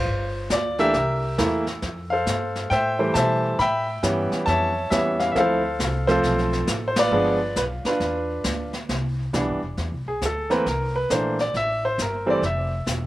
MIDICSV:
0, 0, Header, 1, 5, 480
1, 0, Start_track
1, 0, Key_signature, 0, "major"
1, 0, Tempo, 441501
1, 61, Time_signature, 4, 2, 24, 8
1, 14205, End_track
2, 0, Start_track
2, 0, Title_t, "Grand piano"
2, 0, Program_c, 0, 0
2, 0, Note_on_c, 0, 65, 54
2, 0, Note_on_c, 0, 72, 72
2, 566, Note_off_c, 0, 72, 0
2, 566, Note_on_c, 0, 74, 81
2, 823, Note_off_c, 0, 65, 0
2, 858, Note_on_c, 0, 52, 64
2, 859, Note_on_c, 0, 57, 61
2, 863, Note_on_c, 0, 62, 69
2, 864, Note_on_c, 0, 58, 60
2, 868, Note_on_c, 0, 76, 102
2, 872, Note_on_c, 0, 67, 67
2, 872, Note_on_c, 0, 70, 72
2, 873, Note_off_c, 0, 74, 0
2, 1007, Note_off_c, 0, 52, 0
2, 1008, Note_off_c, 0, 57, 0
2, 1010, Note_off_c, 0, 58, 0
2, 1010, Note_off_c, 0, 62, 0
2, 1500, Note_on_c, 0, 52, 57
2, 1504, Note_on_c, 0, 57, 56
2, 1504, Note_on_c, 0, 58, 50
2, 1509, Note_on_c, 0, 64, 65
2, 1775, Note_off_c, 0, 76, 0
2, 1777, Note_off_c, 0, 67, 0
2, 1777, Note_off_c, 0, 70, 0
2, 1779, Note_off_c, 0, 52, 0
2, 1781, Note_off_c, 0, 57, 0
2, 1782, Note_off_c, 0, 58, 0
2, 1784, Note_off_c, 0, 64, 0
2, 2285, Note_on_c, 0, 77, 81
2, 2309, Note_on_c, 0, 72, 56
2, 2316, Note_on_c, 0, 69, 57
2, 2936, Note_on_c, 0, 79, 92
2, 2944, Note_off_c, 0, 72, 0
2, 2956, Note_off_c, 0, 77, 0
2, 2961, Note_on_c, 0, 72, 66
2, 2963, Note_on_c, 0, 76, 66
2, 3219, Note_off_c, 0, 69, 0
2, 3238, Note_off_c, 0, 72, 0
2, 3249, Note_on_c, 0, 52, 60
2, 3253, Note_on_c, 0, 55, 59
2, 3255, Note_on_c, 0, 57, 60
2, 3255, Note_on_c, 0, 72, 65
2, 3413, Note_on_c, 0, 81, 91
2, 3429, Note_off_c, 0, 72, 0
2, 3432, Note_off_c, 0, 76, 0
2, 3432, Note_off_c, 0, 79, 0
2, 3446, Note_on_c, 0, 72, 64
2, 3448, Note_on_c, 0, 76, 62
2, 3862, Note_off_c, 0, 81, 0
2, 3865, Note_off_c, 0, 52, 0
2, 3867, Note_off_c, 0, 55, 0
2, 3868, Note_off_c, 0, 57, 0
2, 3879, Note_off_c, 0, 72, 0
2, 3881, Note_off_c, 0, 76, 0
2, 3903, Note_on_c, 0, 83, 94
2, 3928, Note_on_c, 0, 79, 70
2, 3932, Note_on_c, 0, 76, 72
2, 4378, Note_on_c, 0, 55, 50
2, 4379, Note_on_c, 0, 52, 54
2, 4379, Note_on_c, 0, 59, 51
2, 4384, Note_on_c, 0, 61, 62
2, 4829, Note_off_c, 0, 79, 0
2, 4831, Note_off_c, 0, 76, 0
2, 4846, Note_on_c, 0, 81, 102
2, 4880, Note_on_c, 0, 76, 67
2, 4883, Note_on_c, 0, 73, 66
2, 4889, Note_off_c, 0, 83, 0
2, 5106, Note_off_c, 0, 55, 0
2, 5107, Note_off_c, 0, 52, 0
2, 5107, Note_off_c, 0, 59, 0
2, 5110, Note_off_c, 0, 61, 0
2, 5315, Note_off_c, 0, 76, 0
2, 5332, Note_on_c, 0, 76, 73
2, 5339, Note_on_c, 0, 52, 52
2, 5340, Note_on_c, 0, 55, 49
2, 5342, Note_on_c, 0, 59, 47
2, 5344, Note_on_c, 0, 61, 57
2, 5347, Note_off_c, 0, 81, 0
2, 5650, Note_on_c, 0, 77, 76
2, 5655, Note_off_c, 0, 76, 0
2, 5757, Note_off_c, 0, 77, 0
2, 5780, Note_on_c, 0, 76, 68
2, 5787, Note_off_c, 0, 73, 0
2, 5818, Note_off_c, 0, 52, 0
2, 5819, Note_off_c, 0, 55, 0
2, 5820, Note_off_c, 0, 59, 0
2, 5820, Note_on_c, 0, 53, 53
2, 5820, Note_on_c, 0, 57, 51
2, 5821, Note_off_c, 0, 61, 0
2, 5823, Note_on_c, 0, 60, 49
2, 5826, Note_off_c, 0, 76, 0
2, 5828, Note_on_c, 0, 64, 63
2, 5840, Note_on_c, 0, 77, 92
2, 5868, Note_on_c, 0, 69, 66
2, 5871, Note_on_c, 0, 72, 60
2, 6098, Note_off_c, 0, 53, 0
2, 6098, Note_off_c, 0, 57, 0
2, 6100, Note_off_c, 0, 60, 0
2, 6103, Note_off_c, 0, 64, 0
2, 6587, Note_off_c, 0, 72, 0
2, 6603, Note_on_c, 0, 72, 85
2, 6610, Note_on_c, 0, 53, 71
2, 6612, Note_on_c, 0, 57, 69
2, 6615, Note_on_c, 0, 60, 69
2, 6616, Note_on_c, 0, 65, 79
2, 6623, Note_off_c, 0, 69, 0
2, 6639, Note_on_c, 0, 69, 56
2, 6643, Note_off_c, 0, 77, 0
2, 7212, Note_off_c, 0, 72, 0
2, 7224, Note_off_c, 0, 53, 0
2, 7225, Note_off_c, 0, 57, 0
2, 7227, Note_off_c, 0, 60, 0
2, 7227, Note_off_c, 0, 65, 0
2, 7476, Note_on_c, 0, 72, 73
2, 7540, Note_off_c, 0, 69, 0
2, 7571, Note_off_c, 0, 72, 0
2, 7600, Note_on_c, 0, 65, 65
2, 7601, Note_on_c, 0, 71, 74
2, 7601, Note_on_c, 0, 74, 97
2, 7743, Note_on_c, 0, 53, 58
2, 7745, Note_on_c, 0, 56, 53
2, 7746, Note_on_c, 0, 59, 61
2, 7749, Note_on_c, 0, 62, 66
2, 8020, Note_off_c, 0, 53, 0
2, 8020, Note_off_c, 0, 56, 0
2, 8021, Note_off_c, 0, 59, 0
2, 8023, Note_off_c, 0, 62, 0
2, 8215, Note_off_c, 0, 71, 0
2, 8231, Note_on_c, 0, 71, 84
2, 8253, Note_off_c, 0, 74, 0
2, 8300, Note_off_c, 0, 71, 0
2, 8500, Note_off_c, 0, 65, 0
2, 8548, Note_on_c, 0, 71, 74
2, 8561, Note_on_c, 0, 62, 58
2, 8566, Note_on_c, 0, 65, 58
2, 9455, Note_off_c, 0, 71, 0
2, 9461, Note_off_c, 0, 62, 0
2, 9464, Note_off_c, 0, 65, 0
2, 10145, Note_on_c, 0, 52, 51
2, 10149, Note_on_c, 0, 59, 43
2, 10150, Note_on_c, 0, 55, 44
2, 10154, Note_on_c, 0, 62, 61
2, 10421, Note_off_c, 0, 52, 0
2, 10423, Note_off_c, 0, 59, 0
2, 10424, Note_off_c, 0, 55, 0
2, 10426, Note_off_c, 0, 62, 0
2, 10957, Note_on_c, 0, 68, 62
2, 11108, Note_off_c, 0, 68, 0
2, 11148, Note_on_c, 0, 69, 64
2, 11413, Note_on_c, 0, 52, 54
2, 11416, Note_on_c, 0, 57, 55
2, 11419, Note_on_c, 0, 58, 60
2, 11420, Note_on_c, 0, 60, 67
2, 11426, Note_off_c, 0, 69, 0
2, 11427, Note_on_c, 0, 71, 85
2, 11564, Note_off_c, 0, 52, 0
2, 11566, Note_off_c, 0, 57, 0
2, 11567, Note_off_c, 0, 58, 0
2, 11568, Note_off_c, 0, 60, 0
2, 11583, Note_off_c, 0, 71, 0
2, 11615, Note_on_c, 0, 70, 68
2, 11899, Note_off_c, 0, 70, 0
2, 11912, Note_on_c, 0, 71, 77
2, 12066, Note_off_c, 0, 71, 0
2, 12070, Note_on_c, 0, 52, 54
2, 12072, Note_on_c, 0, 57, 48
2, 12077, Note_on_c, 0, 58, 40
2, 12077, Note_on_c, 0, 62, 56
2, 12091, Note_on_c, 0, 72, 72
2, 12345, Note_off_c, 0, 52, 0
2, 12345, Note_off_c, 0, 57, 0
2, 12348, Note_off_c, 0, 58, 0
2, 12348, Note_off_c, 0, 62, 0
2, 12377, Note_off_c, 0, 72, 0
2, 12401, Note_on_c, 0, 74, 76
2, 12551, Note_off_c, 0, 74, 0
2, 12575, Note_on_c, 0, 76, 92
2, 12859, Note_off_c, 0, 76, 0
2, 12883, Note_on_c, 0, 72, 78
2, 13032, Note_off_c, 0, 72, 0
2, 13064, Note_on_c, 0, 70, 64
2, 13332, Note_on_c, 0, 52, 64
2, 13333, Note_on_c, 0, 55, 55
2, 13337, Note_on_c, 0, 57, 58
2, 13340, Note_on_c, 0, 60, 72
2, 13344, Note_off_c, 0, 70, 0
2, 13375, Note_on_c, 0, 74, 78
2, 13484, Note_off_c, 0, 52, 0
2, 13485, Note_off_c, 0, 55, 0
2, 13487, Note_off_c, 0, 57, 0
2, 13488, Note_off_c, 0, 60, 0
2, 13518, Note_off_c, 0, 74, 0
2, 13541, Note_on_c, 0, 76, 69
2, 13969, Note_off_c, 0, 76, 0
2, 14205, End_track
3, 0, Start_track
3, 0, Title_t, "Upright bass"
3, 0, Program_c, 1, 32
3, 56, Note_on_c, 1, 31, 83
3, 524, Note_off_c, 1, 31, 0
3, 544, Note_on_c, 1, 38, 80
3, 1008, Note_off_c, 1, 38, 0
3, 1018, Note_on_c, 1, 36, 83
3, 1485, Note_off_c, 1, 36, 0
3, 1504, Note_on_c, 1, 40, 80
3, 1967, Note_off_c, 1, 40, 0
3, 1984, Note_on_c, 1, 41, 80
3, 2447, Note_off_c, 1, 41, 0
3, 2457, Note_on_c, 1, 43, 77
3, 2924, Note_off_c, 1, 43, 0
3, 2942, Note_on_c, 1, 45, 76
3, 3406, Note_off_c, 1, 45, 0
3, 3421, Note_on_c, 1, 47, 80
3, 3885, Note_off_c, 1, 47, 0
3, 3900, Note_on_c, 1, 45, 75
3, 4365, Note_off_c, 1, 45, 0
3, 4379, Note_on_c, 1, 43, 85
3, 4668, Note_off_c, 1, 43, 0
3, 4859, Note_on_c, 1, 41, 84
3, 5324, Note_off_c, 1, 41, 0
3, 5338, Note_on_c, 1, 40, 85
3, 5804, Note_off_c, 1, 40, 0
3, 5822, Note_on_c, 1, 38, 86
3, 6285, Note_off_c, 1, 38, 0
3, 6296, Note_on_c, 1, 36, 83
3, 6762, Note_off_c, 1, 36, 0
3, 6777, Note_on_c, 1, 35, 82
3, 7243, Note_off_c, 1, 35, 0
3, 7257, Note_on_c, 1, 33, 79
3, 7723, Note_off_c, 1, 33, 0
3, 7731, Note_on_c, 1, 31, 85
3, 8200, Note_off_c, 1, 31, 0
3, 8217, Note_on_c, 1, 35, 70
3, 8506, Note_off_c, 1, 35, 0
3, 8697, Note_on_c, 1, 40, 81
3, 9163, Note_off_c, 1, 40, 0
3, 9179, Note_on_c, 1, 38, 75
3, 9644, Note_off_c, 1, 38, 0
3, 9663, Note_on_c, 1, 36, 82
3, 10126, Note_off_c, 1, 36, 0
3, 10143, Note_on_c, 1, 35, 68
3, 10293, Note_on_c, 1, 31, 45
3, 10309, Note_off_c, 1, 35, 0
3, 10456, Note_off_c, 1, 31, 0
3, 10464, Note_on_c, 1, 28, 67
3, 10610, Note_off_c, 1, 28, 0
3, 10625, Note_on_c, 1, 40, 79
3, 10781, Note_on_c, 1, 36, 52
3, 10797, Note_off_c, 1, 40, 0
3, 10932, Note_off_c, 1, 36, 0
3, 10938, Note_on_c, 1, 35, 46
3, 11087, Note_off_c, 1, 35, 0
3, 11106, Note_on_c, 1, 38, 70
3, 11568, Note_off_c, 1, 38, 0
3, 11589, Note_on_c, 1, 36, 73
3, 12050, Note_off_c, 1, 36, 0
3, 12067, Note_on_c, 1, 34, 78
3, 12530, Note_off_c, 1, 34, 0
3, 12544, Note_on_c, 1, 33, 83
3, 13008, Note_off_c, 1, 33, 0
3, 13023, Note_on_c, 1, 31, 76
3, 13488, Note_off_c, 1, 31, 0
3, 13502, Note_on_c, 1, 29, 82
3, 13967, Note_off_c, 1, 29, 0
3, 13983, Note_on_c, 1, 28, 83
3, 14205, Note_off_c, 1, 28, 0
3, 14205, End_track
4, 0, Start_track
4, 0, Title_t, "Muted upright bass strokes"
4, 4691, Note_on_c, 9, 29, 38
4, 4800, Note_off_c, 9, 29, 0
4, 8524, Note_on_c, 9, 29, 40
4, 8633, Note_off_c, 9, 29, 0
4, 14205, End_track
5, 0, Start_track
5, 0, Title_t, "Drums"
5, 70, Note_on_c, 9, 25, 46
5, 543, Note_on_c, 9, 38, 55
5, 545, Note_on_c, 9, 44, 54
5, 546, Note_on_c, 9, 36, 18
5, 651, Note_off_c, 9, 38, 0
5, 654, Note_off_c, 9, 44, 0
5, 655, Note_off_c, 9, 36, 0
5, 853, Note_on_c, 9, 38, 34
5, 961, Note_off_c, 9, 38, 0
5, 1019, Note_off_c, 9, 25, 0
5, 1019, Note_on_c, 9, 25, 43
5, 1019, Note_on_c, 9, 38, 41
5, 1025, Note_on_c, 9, 36, 18
5, 1128, Note_off_c, 9, 38, 0
5, 1134, Note_off_c, 9, 36, 0
5, 1503, Note_on_c, 9, 38, 57
5, 1505, Note_on_c, 9, 36, 19
5, 1505, Note_on_c, 9, 44, 46
5, 1612, Note_off_c, 9, 38, 0
5, 1614, Note_off_c, 9, 36, 0
5, 1614, Note_off_c, 9, 44, 0
5, 1813, Note_on_c, 9, 38, 41
5, 1922, Note_off_c, 9, 38, 0
5, 1981, Note_off_c, 9, 25, 0
5, 1981, Note_on_c, 9, 25, 45
5, 1981, Note_on_c, 9, 38, 43
5, 1984, Note_on_c, 9, 36, 24
5, 2089, Note_off_c, 9, 38, 0
5, 2093, Note_off_c, 9, 36, 0
5, 2464, Note_on_c, 9, 36, 20
5, 2464, Note_on_c, 9, 38, 56
5, 2466, Note_on_c, 9, 44, 44
5, 2573, Note_off_c, 9, 36, 0
5, 2573, Note_off_c, 9, 38, 0
5, 2575, Note_off_c, 9, 44, 0
5, 2777, Note_on_c, 9, 38, 34
5, 2886, Note_off_c, 9, 38, 0
5, 2943, Note_on_c, 9, 36, 21
5, 2945, Note_off_c, 9, 25, 0
5, 2945, Note_on_c, 9, 25, 41
5, 2945, Note_on_c, 9, 38, 38
5, 3052, Note_off_c, 9, 36, 0
5, 3053, Note_off_c, 9, 38, 0
5, 3423, Note_on_c, 9, 38, 54
5, 3425, Note_on_c, 9, 36, 20
5, 3425, Note_on_c, 9, 44, 53
5, 3532, Note_off_c, 9, 38, 0
5, 3533, Note_off_c, 9, 36, 0
5, 3534, Note_off_c, 9, 44, 0
5, 3904, Note_on_c, 9, 36, 28
5, 3907, Note_off_c, 9, 25, 0
5, 3907, Note_on_c, 9, 25, 55
5, 3907, Note_on_c, 9, 38, 40
5, 4013, Note_off_c, 9, 36, 0
5, 4016, Note_off_c, 9, 38, 0
5, 4384, Note_on_c, 9, 36, 16
5, 4384, Note_on_c, 9, 38, 56
5, 4386, Note_on_c, 9, 44, 45
5, 4492, Note_off_c, 9, 38, 0
5, 4493, Note_off_c, 9, 36, 0
5, 4495, Note_off_c, 9, 44, 0
5, 4695, Note_on_c, 9, 38, 38
5, 4804, Note_off_c, 9, 38, 0
5, 4862, Note_on_c, 9, 36, 18
5, 4863, Note_off_c, 9, 25, 0
5, 4863, Note_on_c, 9, 25, 41
5, 4863, Note_on_c, 9, 38, 40
5, 4971, Note_off_c, 9, 36, 0
5, 4971, Note_off_c, 9, 38, 0
5, 5342, Note_on_c, 9, 36, 19
5, 5342, Note_on_c, 9, 38, 57
5, 5344, Note_on_c, 9, 44, 47
5, 5451, Note_off_c, 9, 36, 0
5, 5451, Note_off_c, 9, 38, 0
5, 5453, Note_off_c, 9, 44, 0
5, 5653, Note_on_c, 9, 38, 41
5, 5761, Note_off_c, 9, 38, 0
5, 5822, Note_on_c, 9, 36, 19
5, 5825, Note_off_c, 9, 25, 0
5, 5825, Note_on_c, 9, 25, 46
5, 5825, Note_on_c, 9, 38, 45
5, 5931, Note_off_c, 9, 36, 0
5, 5934, Note_off_c, 9, 38, 0
5, 6300, Note_on_c, 9, 36, 20
5, 6303, Note_on_c, 9, 38, 55
5, 6305, Note_on_c, 9, 44, 53
5, 6409, Note_off_c, 9, 36, 0
5, 6412, Note_off_c, 9, 38, 0
5, 6414, Note_off_c, 9, 44, 0
5, 6612, Note_on_c, 9, 38, 35
5, 6721, Note_off_c, 9, 38, 0
5, 6777, Note_off_c, 9, 25, 0
5, 6777, Note_on_c, 9, 25, 45
5, 6777, Note_on_c, 9, 38, 39
5, 6779, Note_on_c, 9, 36, 23
5, 6886, Note_off_c, 9, 38, 0
5, 6888, Note_off_c, 9, 36, 0
5, 6936, Note_on_c, 9, 38, 25
5, 7045, Note_off_c, 9, 38, 0
5, 7099, Note_on_c, 9, 38, 37
5, 7208, Note_off_c, 9, 38, 0
5, 7255, Note_on_c, 9, 38, 53
5, 7257, Note_on_c, 9, 44, 54
5, 7258, Note_on_c, 9, 36, 19
5, 7363, Note_off_c, 9, 38, 0
5, 7366, Note_off_c, 9, 44, 0
5, 7367, Note_off_c, 9, 36, 0
5, 7567, Note_on_c, 9, 38, 76
5, 7569, Note_on_c, 9, 51, 62
5, 7676, Note_off_c, 9, 38, 0
5, 7678, Note_off_c, 9, 51, 0
5, 7739, Note_off_c, 9, 25, 0
5, 7739, Note_on_c, 9, 25, 56
5, 8220, Note_on_c, 9, 38, 54
5, 8221, Note_on_c, 9, 36, 19
5, 8222, Note_on_c, 9, 44, 57
5, 8328, Note_off_c, 9, 38, 0
5, 8330, Note_off_c, 9, 36, 0
5, 8330, Note_off_c, 9, 44, 0
5, 8533, Note_on_c, 9, 38, 35
5, 8641, Note_off_c, 9, 38, 0
5, 8700, Note_off_c, 9, 25, 0
5, 8700, Note_on_c, 9, 25, 40
5, 8700, Note_on_c, 9, 38, 40
5, 8701, Note_on_c, 9, 36, 16
5, 8808, Note_off_c, 9, 38, 0
5, 8810, Note_off_c, 9, 36, 0
5, 9177, Note_on_c, 9, 38, 52
5, 9179, Note_on_c, 9, 44, 47
5, 9182, Note_on_c, 9, 36, 19
5, 9286, Note_off_c, 9, 38, 0
5, 9288, Note_off_c, 9, 44, 0
5, 9291, Note_off_c, 9, 36, 0
5, 9492, Note_on_c, 9, 38, 35
5, 9601, Note_off_c, 9, 38, 0
5, 9666, Note_off_c, 9, 25, 0
5, 9666, Note_on_c, 9, 25, 46
5, 9666, Note_on_c, 9, 36, 18
5, 9666, Note_on_c, 9, 38, 43
5, 9775, Note_off_c, 9, 36, 0
5, 9775, Note_off_c, 9, 38, 0
5, 10147, Note_on_c, 9, 36, 22
5, 10149, Note_on_c, 9, 38, 48
5, 10151, Note_on_c, 9, 44, 43
5, 10256, Note_off_c, 9, 36, 0
5, 10258, Note_off_c, 9, 38, 0
5, 10260, Note_off_c, 9, 44, 0
5, 10627, Note_off_c, 9, 25, 0
5, 10627, Note_on_c, 9, 25, 36
5, 10627, Note_on_c, 9, 38, 35
5, 10629, Note_on_c, 9, 36, 19
5, 10736, Note_off_c, 9, 38, 0
5, 10737, Note_off_c, 9, 36, 0
5, 11107, Note_on_c, 9, 38, 52
5, 11109, Note_on_c, 9, 36, 16
5, 11109, Note_on_c, 9, 44, 50
5, 11216, Note_off_c, 9, 38, 0
5, 11218, Note_off_c, 9, 36, 0
5, 11218, Note_off_c, 9, 44, 0
5, 11420, Note_on_c, 9, 38, 38
5, 11529, Note_off_c, 9, 38, 0
5, 11591, Note_on_c, 9, 36, 23
5, 11593, Note_off_c, 9, 25, 0
5, 11593, Note_on_c, 9, 25, 51
5, 11593, Note_on_c, 9, 38, 44
5, 11700, Note_off_c, 9, 36, 0
5, 11702, Note_off_c, 9, 38, 0
5, 12069, Note_on_c, 9, 38, 53
5, 12070, Note_on_c, 9, 36, 20
5, 12071, Note_on_c, 9, 44, 57
5, 12178, Note_off_c, 9, 38, 0
5, 12179, Note_off_c, 9, 36, 0
5, 12180, Note_off_c, 9, 44, 0
5, 12381, Note_on_c, 9, 38, 31
5, 12490, Note_off_c, 9, 38, 0
5, 12549, Note_off_c, 9, 25, 0
5, 12549, Note_on_c, 9, 25, 39
5, 12549, Note_on_c, 9, 36, 19
5, 12549, Note_on_c, 9, 38, 34
5, 12658, Note_off_c, 9, 36, 0
5, 12658, Note_off_c, 9, 38, 0
5, 13029, Note_on_c, 9, 36, 18
5, 13029, Note_on_c, 9, 38, 49
5, 13032, Note_on_c, 9, 44, 46
5, 13138, Note_off_c, 9, 36, 0
5, 13138, Note_off_c, 9, 38, 0
5, 13140, Note_off_c, 9, 44, 0
5, 13509, Note_on_c, 9, 36, 22
5, 13513, Note_off_c, 9, 25, 0
5, 13513, Note_on_c, 9, 25, 46
5, 13513, Note_on_c, 9, 38, 44
5, 13618, Note_off_c, 9, 36, 0
5, 13621, Note_off_c, 9, 38, 0
5, 13987, Note_on_c, 9, 36, 24
5, 13989, Note_on_c, 9, 38, 49
5, 13992, Note_on_c, 9, 44, 50
5, 14096, Note_off_c, 9, 36, 0
5, 14098, Note_off_c, 9, 38, 0
5, 14100, Note_off_c, 9, 44, 0
5, 14205, Note_off_c, 9, 25, 0
5, 14205, End_track
0, 0, End_of_file